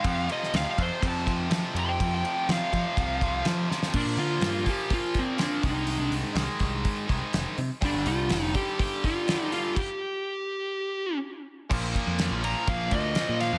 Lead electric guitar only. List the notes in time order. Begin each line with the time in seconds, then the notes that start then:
Already playing: F5
0.32 D#5
0.57 F5
0.71 F5
0.82 C5
1.08 A5
1.79 C6
1.89 G5
2.14 G5
2.52 F5
3.95 D4
4.19 F4
4.69 G4
4.94 F4
5.19 C4
5.41 D4
5.68 D#4
6.00 D4
7.85 D4
8.07 F4
8.56 G4
8.79 G4
9.05 F4
9.53 F4
9.75 G4
12.45 A#5
12.69 F5
12.92 D#5
13.41 F5